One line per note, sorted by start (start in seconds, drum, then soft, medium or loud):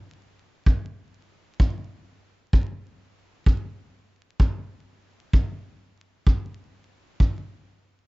0.66 kick medium
1.60 kick medium
2.53 kick medium
3.46 kick medium
4.40 kick medium
5.33 kick medium
6.27 kick medium
7.20 kick medium